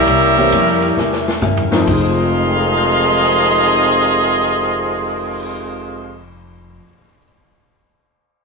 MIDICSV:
0, 0, Header, 1, 8, 480
1, 0, Start_track
1, 0, Key_signature, -4, "minor"
1, 0, Tempo, 449775
1, 77, Time_signature, 4, 2, 24, 8
1, 9015, End_track
2, 0, Start_track
2, 0, Title_t, "Trumpet section"
2, 0, Program_c, 0, 61
2, 0, Note_on_c, 0, 61, 100
2, 0, Note_on_c, 0, 67, 101
2, 0, Note_on_c, 0, 70, 103
2, 0, Note_on_c, 0, 76, 121
2, 1486, Note_off_c, 0, 70, 0
2, 1487, Note_off_c, 0, 61, 0
2, 1488, Note_off_c, 0, 67, 0
2, 1490, Note_off_c, 0, 76, 0
2, 2001, Note_on_c, 0, 68, 97
2, 2005, Note_on_c, 0, 77, 97
2, 2008, Note_on_c, 0, 84, 110
2, 2009, Note_on_c, 0, 75, 99
2, 6650, Note_off_c, 0, 68, 0
2, 6652, Note_off_c, 0, 77, 0
2, 6654, Note_off_c, 0, 75, 0
2, 6654, Note_off_c, 0, 84, 0
2, 9015, End_track
3, 0, Start_track
3, 0, Title_t, "Grand piano"
3, 0, Program_c, 1, 0
3, 397, Note_on_c, 1, 52, 74
3, 400, Note_on_c, 1, 58, 64
3, 406, Note_on_c, 1, 60, 68
3, 407, Note_on_c, 1, 61, 70
3, 415, Note_on_c, 1, 67, 85
3, 541, Note_off_c, 1, 52, 0
3, 543, Note_off_c, 1, 58, 0
3, 546, Note_off_c, 1, 60, 0
3, 546, Note_off_c, 1, 61, 0
3, 550, Note_off_c, 1, 67, 0
3, 1822, Note_on_c, 1, 53, 78
3, 1830, Note_on_c, 1, 60, 76
3, 1831, Note_on_c, 1, 56, 71
3, 1839, Note_on_c, 1, 63, 78
3, 1840, Note_on_c, 1, 70, 86
3, 1922, Note_on_c, 1, 41, 65
3, 1940, Note_off_c, 1, 53, 0
3, 1956, Note_on_c, 1, 53, 54
3, 1971, Note_off_c, 1, 56, 0
3, 1977, Note_off_c, 1, 60, 0
3, 1982, Note_off_c, 1, 63, 0
3, 1982, Note_off_c, 1, 70, 0
3, 1987, Note_on_c, 1, 56, 55
3, 2018, Note_on_c, 1, 63, 59
3, 2053, Note_on_c, 1, 68, 67
3, 2478, Note_on_c, 1, 70, 44
3, 2559, Note_on_c, 1, 75, 37
3, 2648, Note_on_c, 1, 79, 39
3, 2743, Note_on_c, 1, 82, 34
3, 2856, Note_on_c, 1, 87, 37
3, 2966, Note_on_c, 1, 91, 30
3, 3089, Note_on_c, 1, 94, 32
3, 7204, Note_off_c, 1, 41, 0
3, 7239, Note_off_c, 1, 53, 0
3, 7269, Note_off_c, 1, 56, 0
3, 7301, Note_off_c, 1, 63, 0
3, 7336, Note_off_c, 1, 68, 0
3, 7396, Note_off_c, 1, 70, 0
3, 7436, Note_off_c, 1, 75, 0
3, 7481, Note_off_c, 1, 79, 0
3, 7528, Note_off_c, 1, 82, 0
3, 7585, Note_off_c, 1, 87, 0
3, 7640, Note_off_c, 1, 91, 0
3, 7701, Note_off_c, 1, 94, 0
3, 9015, End_track
4, 0, Start_track
4, 0, Title_t, "Steel-string acoustic guitar"
4, 0, Program_c, 2, 25
4, 68, Note_on_c, 2, 48, 45
4, 80, Note_on_c, 2, 58, 55
4, 93, Note_on_c, 2, 61, 60
4, 104, Note_on_c, 2, 64, 51
4, 406, Note_off_c, 2, 48, 0
4, 412, Note_off_c, 2, 58, 0
4, 419, Note_off_c, 2, 61, 0
4, 424, Note_off_c, 2, 64, 0
4, 555, Note_on_c, 2, 48, 69
4, 565, Note_on_c, 2, 58, 62
4, 569, Note_on_c, 2, 61, 74
4, 577, Note_on_c, 2, 64, 75
4, 889, Note_off_c, 2, 48, 0
4, 894, Note_off_c, 2, 58, 0
4, 897, Note_off_c, 2, 61, 0
4, 900, Note_off_c, 2, 64, 0
4, 1029, Note_on_c, 2, 48, 63
4, 1045, Note_on_c, 2, 58, 59
4, 1052, Note_on_c, 2, 61, 61
4, 1065, Note_on_c, 2, 64, 59
4, 1366, Note_off_c, 2, 48, 0
4, 1374, Note_off_c, 2, 58, 0
4, 1378, Note_off_c, 2, 61, 0
4, 1384, Note_off_c, 2, 64, 0
4, 1510, Note_on_c, 2, 48, 72
4, 1513, Note_on_c, 2, 58, 72
4, 1526, Note_on_c, 2, 61, 74
4, 1529, Note_on_c, 2, 64, 78
4, 1847, Note_off_c, 2, 48, 0
4, 1848, Note_off_c, 2, 58, 0
4, 1854, Note_off_c, 2, 61, 0
4, 1856, Note_off_c, 2, 64, 0
4, 1922, Note_on_c, 2, 53, 69
4, 2010, Note_on_c, 2, 63, 71
4, 2148, Note_on_c, 2, 72, 70
4, 7204, Note_off_c, 2, 53, 0
4, 7293, Note_off_c, 2, 63, 0
4, 7430, Note_off_c, 2, 72, 0
4, 9015, End_track
5, 0, Start_track
5, 0, Title_t, "Trombone section"
5, 0, Program_c, 3, 61
5, 0, Note_on_c, 3, 55, 95
5, 0, Note_on_c, 3, 58, 101
5, 0, Note_on_c, 3, 64, 92
5, 1472, Note_off_c, 3, 64, 0
5, 1477, Note_off_c, 3, 55, 0
5, 1477, Note_off_c, 3, 58, 0
5, 1980, Note_on_c, 3, 41, 104
5, 1984, Note_on_c, 3, 56, 98
5, 1985, Note_on_c, 3, 48, 105
5, 1989, Note_on_c, 3, 51, 96
5, 6640, Note_off_c, 3, 41, 0
5, 6642, Note_off_c, 3, 48, 0
5, 6642, Note_off_c, 3, 56, 0
5, 6644, Note_off_c, 3, 51, 0
5, 9015, End_track
6, 0, Start_track
6, 0, Title_t, "Upright bass"
6, 0, Program_c, 4, 32
6, 71, Note_on_c, 4, 36, 94
6, 539, Note_off_c, 4, 36, 0
6, 550, Note_on_c, 4, 41, 94
6, 1018, Note_off_c, 4, 41, 0
6, 1028, Note_on_c, 4, 40, 89
6, 1497, Note_off_c, 4, 40, 0
6, 1508, Note_on_c, 4, 43, 90
6, 1977, Note_off_c, 4, 43, 0
6, 1997, Note_on_c, 4, 29, 102
6, 7237, Note_off_c, 4, 29, 0
6, 9015, End_track
7, 0, Start_track
7, 0, Title_t, "Cymbal swell"
7, 2315, Note_on_c, 9, 59, 49
7, 5740, Note_off_c, 9, 59, 0
7, 9015, End_track
8, 0, Start_track
8, 0, Title_t, "Drums"
8, 82, Note_on_c, 9, 51, 73
8, 188, Note_off_c, 9, 51, 0
8, 559, Note_on_c, 9, 44, 72
8, 559, Note_on_c, 9, 51, 86
8, 666, Note_off_c, 9, 44, 0
8, 666, Note_off_c, 9, 51, 0
8, 877, Note_on_c, 9, 51, 57
8, 984, Note_off_c, 9, 51, 0
8, 1042, Note_on_c, 9, 38, 56
8, 1149, Note_off_c, 9, 38, 0
8, 1202, Note_on_c, 9, 38, 56
8, 1308, Note_off_c, 9, 38, 0
8, 1366, Note_on_c, 9, 38, 84
8, 1472, Note_off_c, 9, 38, 0
8, 1515, Note_on_c, 9, 44, 63
8, 1516, Note_on_c, 9, 47, 74
8, 1622, Note_off_c, 9, 44, 0
8, 1623, Note_off_c, 9, 47, 0
8, 1678, Note_on_c, 9, 43, 85
8, 1785, Note_off_c, 9, 43, 0
8, 1835, Note_on_c, 9, 38, 105
8, 1941, Note_off_c, 9, 38, 0
8, 1994, Note_on_c, 9, 36, 60
8, 2001, Note_on_c, 9, 49, 69
8, 2100, Note_off_c, 9, 36, 0
8, 2108, Note_off_c, 9, 49, 0
8, 9015, End_track
0, 0, End_of_file